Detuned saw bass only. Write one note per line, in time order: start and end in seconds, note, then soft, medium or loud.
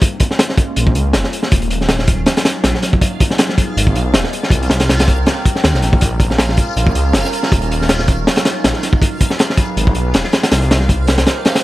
0.77 0.94 A#1 loud
0.95 1.16 C#2 loud
1.14 1.23 F1 loud
1.52 2.25 D#1 medium
2.64 2.73 A#1 medium
3.77 3.94 G#1 loud
3.95 4.16 B1 loud
4.14 4.23 D#1 loud
4.50 5.25 C2 medium
5.64 5.73 D#2 medium
5.74 5.82 C2 loud
5.83 6.56 A#1 loud
6.76 6.94 A#1 loud
6.95 7.16 C#2 loud
7.14 7.23 F1 loud
7.52 8.25 D#1 medium
8.64 8.73 A#1 medium
9.77 9.94 G#1 loud
9.95 10.16 B1 loud
10.14 10.23 D#1 loud
10.52 11.25 C2 medium